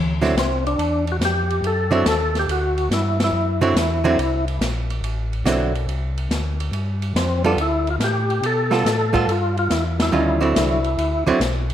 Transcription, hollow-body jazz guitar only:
0.21 D3 F#3 C4 E4
1.91 D3 F#3 C4 E4
3.61 D3 F#3 C4 E4
4.04 D3 F#3 C4 E4
5.46 D3 F#3 C4 E4
7.44 G3 B3 F4 A4
8.71 G3 B3 F4 A4
9.13 G3 B3 F4 A4
10.12 D#3 G3 C#4 F4
10.41 D3 F#3 C4 E4
11.27 D3 F#3 C4 E4

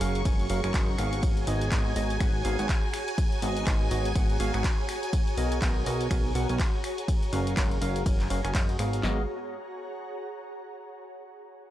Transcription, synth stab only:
0.01 F#3 C#4 F#4 A#4 F5
0.25 F#3 C#4 F#4 A#4 G#5
0.50 F#3 C#4 F#4 A#4 F5
0.64 F#3 C#4 F#4 A#4 G#5
0.74 F#3 F#4 D#5
0.99 G#2 B3 F#4 G#4 F5
1.47 G#2 B3 F#4 G#4 D#5
1.72 G#2 B3 F#4 G#4 D#5
1.96 G#2 B3 F#4 G#4 D#5
2.20 G#2 B3 F#4 G#4 F#5
2.45 G#2 B3 F#4 G#4 F5
2.59 G#2 B3 F#4 G#4 F#5
3.42 G#2 B3 F#4 G#4 D#5
3.67 G#2 B3 F#4 G#4 D#5
3.91 G#2 B3 F#4 G#4 D#5
4.16 G#2 B3 F#4 G#4 F#5
4.40 G#2 B3 F#4 G#4 F5
4.54 G#2 B3 F#4 G#4 F#5
5.38 B2 B3 F#4 A#4 D#5
5.62 B2 B3 F#4 A#4 D#5
5.86 B2 B3 F#4 A#4 D#5
6.11 B2 B3 F#4 A#4 G#5
6.35 B2 B3 F#4 A#4 F#5
6.49 B2 B3 F#4 A#4 G#5
7.33 F#3 C#4 F#4 A#4 F5
7.57 F#3 C#4 F#4 A#4 F5
7.82 F#3 C#4 F#4 A#4 F5
8.06 F#3 C#4 F#4 A#4 G#5
8.30 F#3 C#4 F#4 A#4 F5
8.44 F#3 C#4 F#4 A#4 G#5
8.55 F#3 C#4 F#4 D#5
8.79 G#2 B3 F#4 G#4 F5
9.04 B3 F#4 G#4 D#5

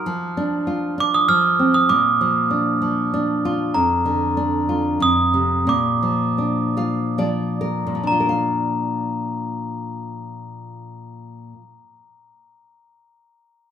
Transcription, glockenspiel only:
1.00 D6
1.14 D#6
1.29 F6
1.74 D#6
1.89 D6
3.74 A#5
5.02 D#6
5.69 D6
8.07 A#5

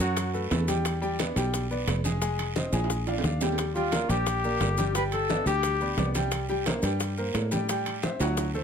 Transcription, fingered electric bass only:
0.00 F#2
0.51 E2
1.36 B1
1.87 F1
2.72 A#1
3.23 D#2
4.09 A#1
4.60 G1
5.46 D2
5.97 C2
6.83 G2
7.34 A2
8.20 D2

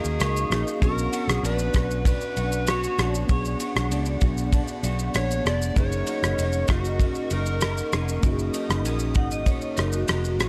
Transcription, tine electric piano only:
Already playing: A#3 C#4 D#4 F#4
0.80 B3 C#4 D4
0.85 F#4
3.27 B3 D4
3.32 G#4
5.74 A#3 C#4 D#4
5.79 G#4
8.21 A#3 C#4 D#4
8.26 F#4
8.32 G#4

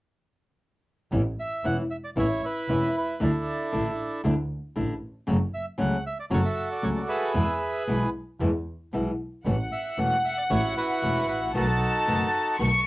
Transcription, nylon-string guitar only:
1.12 E3 B3 C#4 E4
1.64 E3 B3 C#4 E4
2.16 E3 B3 C#4 E4
2.69 E3 B3 C#4 E4
3.20 D3 A3 D4 E4
3.72 D3 A3 D4 E4
4.24 D3 A3 D4 E4
4.76 D3 A3 D4 E4
5.27 C#3 F#3 A3 C#4 F#4
5.78 C#3 F#3 A3 C#4 F#4
6.31 C#3 F#3 A3 C#4 F#4
6.82 C#3 F#3 A3 C#4 F#4
7.34 B2 E3 G#3 B3 E4
7.87 B2 E3 G#3 B3 E4
8.40 B2 E3 G#3 B3 E4
8.93 B2 E3 G#3 B3 E4
9.46 E3 A3 C#4 F#4
9.98 E3 A3 C#4 F#4
10.50 E3 A3 C#4 F#4
11.02 E3 A3 C#4 F#4
11.54 B2 D#3 A3 B3 F#4
12.07 B2 D#3 A3 B3 F#4
12.59 B2 D#3 A3 B3 F#4

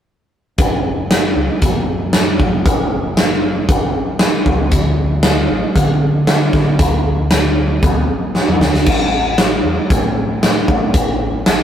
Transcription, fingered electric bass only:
0.58 F#1
1.35 C#2
1.62 F#2
2.40 F#2
2.66 F#1
3.68 F#1
4.46 C#2
4.72 D2
5.50 A1
5.75 D3
6.54 D3
6.80 D2
7.83 D2
8.60 D2
8.86 A1
9.63 E2
9.90 A2
10.69 A2
10.94 A1

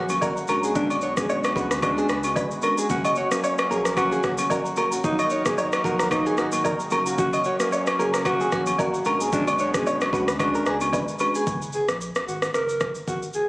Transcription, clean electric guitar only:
0.23 A#4
0.49 A#4
0.64 G#4
0.91 D5
1.03 C#5
1.30 C#5
1.57 B4
1.71 B4
1.98 G#4
2.10 B4
2.37 B4
2.64 A#4
2.79 G#4
3.05 D#5
3.17 C#5
3.44 C#5
3.71 A#4
3.86 A#4
4.12 G#4
4.24 F#4
4.51 A#4
4.78 A#4
4.93 F#4
5.20 D#5
5.32 C#5
5.58 C#5
5.85 A#4
6.00 A#4
6.27 G#4
6.39 F#4
6.65 A#4
6.92 A#4
7.07 F#4
7.34 D#5
7.46 C#5
7.73 C#5
7.99 A#4
8.14 A#4
8.41 G#4
8.53 F#4
8.80 A#4
9.07 A#4
9.21 G#4
9.48 D5
9.60 C#5
9.87 C#5
10.14 B4
10.28 B4
10.55 A#4
10.67 G#4
10.94 B4
11.21 B4
11.36 G#4

